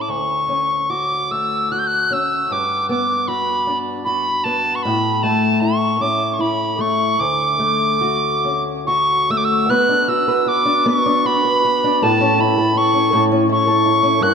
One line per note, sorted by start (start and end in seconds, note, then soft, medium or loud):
0.00 0.17 A2 medium
0.00 0.48 C#4 soft
0.00 0.17 E4 soft
0.00 0.89 A4 soft
0.00 0.11 D6 soft
0.08 2.50 D2 soft
0.08 0.91 C#6 medium
0.48 2.10 C#4 soft
0.90 1.71 F#4 soft
0.90 1.33 D6 medium
1.31 2.58 A3 soft
1.31 1.73 E6 medium
1.72 3.28 F#4 soft
1.72 1.80 F#6 medium
1.79 1.88 G6 medium
1.87 2.14 F#6 medium
2.11 2.58 C#4 soft
2.11 2.54 E6 medium
2.50 4.84 G2 medium
2.50 2.89 D6 medium
2.89 4.44 B3 soft
2.89 3.29 D6 medium
3.28 4.05 F#4 medium
3.28 3.78 B5 medium
3.67 4.92 D4 soft
4.05 4.92 F#4 medium
4.05 4.45 B5 medium
4.44 4.92 B3 medium
4.44 4.77 A5 medium
4.75 4.84 C#6 medium
4.83 7.21 A2 medium
4.83 5.24 B5 medium
5.23 6.78 A3 medium
5.23 5.62 A5 medium
5.60 6.38 E4 medium
5.60 6.03 C#6 medium
6.01 8.44 C#4 soft
6.01 6.35 D6 medium
6.33 6.42 C#6 medium
6.39 7.27 E4 medium
6.39 6.82 B5 medium
6.79 7.59 A3 soft
6.79 7.21 C#6 medium
7.19 9.70 D2 medium
7.19 8.63 D6 medium
7.59 9.29 A3 medium
8.01 8.87 F#4 medium
8.45 9.78 C#4 soft
8.87 9.70 F#4 medium
8.87 9.32 C#6 medium
9.30 9.78 A3 medium
9.30 9.39 E6 medium
9.37 9.46 D6 medium
9.44 9.71 E6 medium
9.69 10.85 B3 medium
9.69 10.27 B4 medium
9.69 10.10 F#6 medium
9.89 10.64 D4 medium
10.08 10.45 F#4 medium
10.08 10.49 E6 medium
10.28 10.85 B4 medium
10.46 11.24 F#4 soft
10.46 10.88 D6 medium
10.65 11.05 D4 soft
10.86 12.09 B3 medium
10.86 11.44 B4 medium
10.86 11.28 C#6 medium
11.06 11.83 D4 medium
11.25 11.63 F#4 medium
11.25 12.04 B5 medium
11.45 12.02 B4 medium
11.65 12.10 F#4 soft
11.84 12.10 D4 medium
12.02 13.12 A2 medium
12.02 12.57 A4 medium
12.02 12.42 A5 medium
12.21 12.92 C#4 medium
12.39 12.75 E4 medium
12.39 12.79 B5 medium
12.58 13.12 A4 medium
12.75 13.49 E4 soft
12.75 13.24 C#6 medium
12.93 13.30 C#4 medium
13.13 14.21 A2 medium
13.13 13.66 A4 medium
13.31 14.02 C#4 medium
13.49 13.85 E4 medium
13.49 14.24 C#6 medium
13.67 14.21 A4 medium
13.86 14.34 E4 medium
14.03 14.28 C#4 medium
14.21 14.34 G2 medium
14.21 14.34 A#4 medium
14.21 14.34 F#6 medium